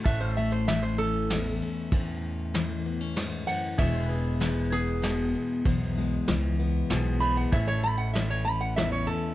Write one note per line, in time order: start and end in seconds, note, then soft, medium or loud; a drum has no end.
0.00 0.37 A3 medium
0.05 1.59 A1 medium
0.05 1.30 A2 medium
0.05 1.00 C#4 medium
0.05 3.74 A4 medium
0.05 3.75 C#5 medium
0.05 0.20 E5 loud
0.05 0.32 F#5 medium
0.05 kick loud
0.05 ride medium
0.20 0.36 C5 medium
0.32 3.76 E5 medium
0.37 1.89 A3 medium
0.37 0.52 E5 medium
0.52 0.67 C5 medium
0.68 2.54 E3 medium
0.68 0.83 E5 medium
0.68 snare medium
0.68 ride medium
0.83 0.98 C5 medium
0.98 1.61 C#4 medium
0.98 2.19 A4 loud
1.30 1.92 E2 medium
1.30 3.81 E4 medium
1.30 snare medium
1.30 ride medium
1.62 1.89 C#4 medium
1.92 3.46 E2 medium
1.92 3.79 A2 medium
1.92 2.85 C#4 medium
1.92 kick loud
1.92 ride medium
2.54 3.79 E3 medium
2.54 snare medium
2.54 ride medium
2.86 3.01 B3 medium
3.01 3.79 C#4 soft
3.16 3.47 G#2 medium
3.16 snare medium
3.16 ride medium
3.47 3.78 F#2 medium
3.47 3.77 F#5 medium
3.47 ride medium
3.78 5.33 E1 medium
3.78 5.64 E2 medium
3.78 4.40 E3 medium
3.78 4.10 G#3 medium
3.78 4.72 B3 medium
3.78 7.48 G#4 medium
3.78 5.63 G#4 medium
3.78 4.04 C#5 medium
3.78 4.39 E5 medium
3.78 7.49 E5 medium
3.78 kick loud
3.78 ride medium
4.04 7.49 B4 medium
4.10 5.62 G#3 medium
4.40 6.28 E3 medium
4.40 4.71 B4 medium
4.40 snare medium
4.40 ride medium
4.72 5.02 B3 medium
4.72 6.55 G#4 loud
5.02 5.61 B2 medium
5.02 5.34 B3 medium
5.02 snare medium
5.02 ride medium
5.35 5.65 B3 medium
5.65 6.17 B1 medium
5.65 7.52 E2 medium
5.65 6.58 B3 medium
5.65 kick loud
5.65 ride medium
5.97 7.49 G#3 medium
6.28 6.81 C#2 medium
6.28 8.14 E3 medium
6.28 snare medium
6.28 ride medium
6.59 7.20 B3 medium
6.90 7.43 B1 medium
6.90 7.48 B2 medium
6.90 7.49 G#4 medium
6.90 snare medium
6.90 ride medium
7.20 7.53 B3 medium
7.20 7.36 B5 loud
7.20 ride medium
7.37 7.52 F#5 medium
7.52 9.07 A1 medium
7.52 8.77 A2 medium
7.52 8.46 C#4 medium
7.52 7.72 G#4 medium
7.52 9.35 C#5 medium
7.52 7.68 E5 medium
7.52 9.35 E5 medium
7.52 kick loud
7.52 ride medium
7.67 7.83 C#5 medium
7.72 9.35 A4 medium
7.83 9.35 A3 medium
7.83 7.99 B5 medium
7.98 8.13 F#5 medium
8.13 9.35 E3 medium
8.13 8.29 E5 medium
8.13 snare medium
8.13 ride medium
8.30 8.45 C#5 medium
8.45 9.09 C#4 medium
8.45 8.60 B5 medium
8.61 8.76 F#5 medium
8.76 9.35 E2 medium
8.76 9.35 E4 medium
8.76 8.92 E5 loud
8.76 snare medium
8.76 ride medium
8.92 9.07 C#5 medium
9.07 9.35 C#4 medium
9.07 9.35 A4 medium